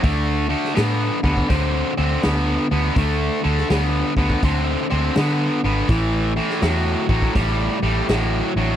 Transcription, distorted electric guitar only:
X:1
M:4/4
L:1/8
Q:"Swing" 1/4=82
K:Ddor
V:1 name="Distorted electric guitar" clef=bass
[D,A,] [D,A,] [D,B,] [D,B,] [D,C] [D,C] [D,B,] [D,B,] | [D,A,] [D,A,] [D,B,] [D,B,] [D,C] [D,C] [D,B,] [D,B,] | [A,,E,] [A,,E,] [A,,^F,] [A,,F,] [A,,G,] [A,,G,] [A,,F,] [A,,F,] |]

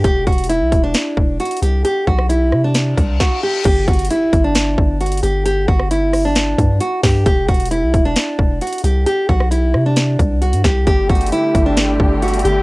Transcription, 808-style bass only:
X:1
M:4/4
L:1/16
Q:1/4=133
K:G
V:1 name="808-style bass" clef=bass
E,,,2 E,,,3 B,,, E,,,2 z2 E,,,2 z2 C,,2 | z2 B,,,4 C,4 C,,2 z4 | G,,,2 G,,,2 z2 G,,,4 G,,,4 G,,,2- | G,,,2 G,,,8 G,,2 z2 G,,2 |
E,,,2 E,,,3 B,,, E,,,2 z2 E,,,2 z2 C,,2 | z2 B,,,4 C,4 C,,3 G,, C,,2 | G,,,2 G,,,2 z2 G,,,4 G,,,4 G,,,2 |]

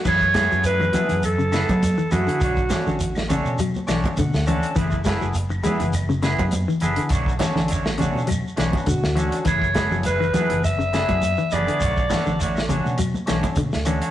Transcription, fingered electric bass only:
X:1
M:4/4
L:1/16
Q:"Swing 16ths" 1/4=102
K:F#m
V:1 name="Fingered electric bass" clef=bass
F,,3 F,,3 z F,,4 F,2 z F,, z | B,,,2 z A,,,4 B,,2 z B,,, z B,, D,,2 z | F,,,3 F,,,3 z F,,,4 F,,2 z F,,, z | B,,,2 z A,,,4 B,,2 z B,,, z B,, D,,2 z |
F,,,3 F,,,3 z F,,,4 F,,2 z F,,, z | B,,,2 z A,,,4 B,,2 z B,,, z B,, D,,2 z |]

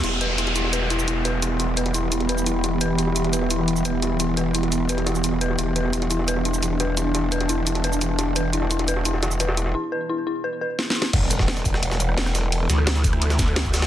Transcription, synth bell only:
X:1
M:4/4
L:1/16
Q:1/4=173
K:Em
V:1 name="Synth bell"
E2 B z E z E2 B z E z E2 B z | E z E2 B z E z E2 B z E z E2 | B z E z E2 B z E z E2 B z E z | E2 B z E z E2 B z E z E2 B z |
E2 B z E z E2 B z E z E2 B z | E z E2 B z E z E2 B z E z E2 | B z E z E2 B z E z E2 B z E z | E2 B z E z E2 B z B z E z E z |
z16 | z16 |]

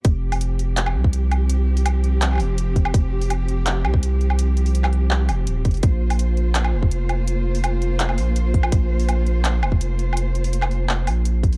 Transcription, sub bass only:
X:1
M:4/4
L:1/8
Q:1/4=166
K:Bbmix
V:1 name="Sub bass" clef=bass
F,,,4- F,,, C,,3- | C,,4- C,, F,,,3 | F,,,4- F,,, C,,3- | C,,4- C,, F,,, E,,, F,,, |
B,,,4- B,,, F,,,3- | F,,,4- F,,, B,,,3 | B,,,4- B,,, F,,,3- | F,,,4- F,,, B,,,3 |]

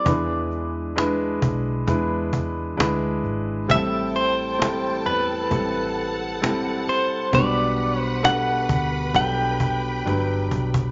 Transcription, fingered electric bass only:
X:1
M:4/4
L:1/8
Q:1/4=66
K:G
V:1 name="Fingered electric bass" clef=bass
E,,3 B,,, E,,2 D,, ^G,,, | A,,,3 E,, A,,,3 z | B,,,3 D,, B,,,2 G,,, B,,, |]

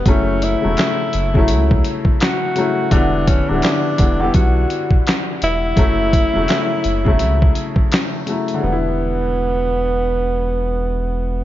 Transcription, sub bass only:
X:1
M:4/4
L:1/16
Q:"Swing 16ths" 1/4=84
K:Edor
V:1 name="Sub bass" clef=bass
F,,,3 E,,, z2 F,,,2 C,,2 z6 | E,,,3 D,,, z2 E,,,2 B,,,2 z4 E,,,2 | F,,,3 E,,, z2 F,,,2 C,,2 z6 | E,,,16 |]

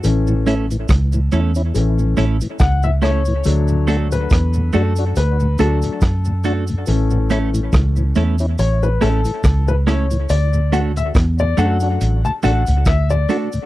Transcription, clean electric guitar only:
X:1
M:4/4
L:1/8
Q:"Swing 16ths" 1/4=70
K:A
V:1 name="Clean electric guitar"
z [A,CEA] z [A,CEA] z [A,CEA] z [A,CEA] | z [A,DFA] z [A,DFA] z [A,DFA] z [A,DFA] | z [A,CEA] z [A,CEA] z [A,CEA] z [A,CEA] | z [A,DFA] z [A,DFA] z [A,DFA] z [A,DFA] |]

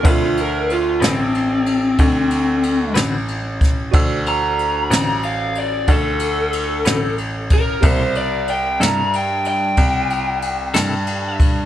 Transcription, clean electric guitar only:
X:1
M:12/8
L:1/8
Q:3/8=62
K:Ddor
V:1 name="Clean electric guitar"
[D,C^FB] z2 [D,CFB] z4 z [D,CFB] z2 | z3 [D,C^FB] z4 z [D,CFB] z2 | [C,_B,EA] z2 [C,B,EA] z4 z [C,B,EA] z2 |]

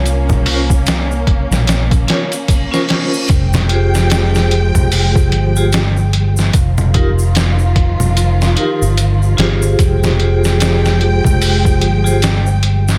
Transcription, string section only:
X:1
M:4/4
L:1/8
Q:"Swing 16ths" 1/4=74
K:Fm
V:1 name="String section" clef=bass
[B,D]8 | [F,A,g]8 | [E,F,F]8 | [F,A,g]8 |]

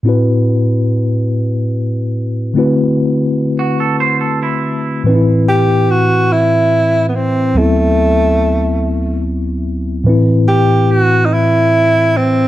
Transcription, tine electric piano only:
X:1
M:6/8
L:1/8
Q:3/8=48
K:Ador
V:1 name="Tine electric piano"
[A,,CEFB]6 | [D,A,CEFB]6 | [A,,E,C^DEB]6 | [D,,F,B,CE]6 |
[A,,E,CEB]6 |]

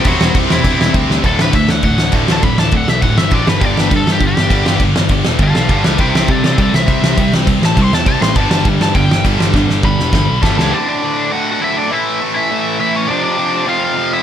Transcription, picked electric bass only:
X:1
M:4/4
L:1/8
Q:1/4=202
K:Glyd
V:1 name="Picked electric bass" clef=bass
E,,, E,,, E,,, E,,, E,,, E,,, D,, D,, | D,,, D,,, D,,2 D,,, D,,, D,,, D,,, | D,,, D,,, D,,, B,,, D,,, G,,, A,,, G,,, | G,,, G,,, G,,2 G,,, G,,, G,,, G,,, |
G,,, G,,, G,,, E,,, G,,, B,,, G,,, C,, | =C,, C,, =C,2 C,, C,, C,, C,, | =C,, C,, C,, A,,, C,, E,, C,, A,,, | G,,, G,,, G,,2 G,,, G,,, G,,, G,,, |
G,,, G,,, G,,, E,,, G,,, B,,, G,,, C,, | z8 | z8 | z8 |]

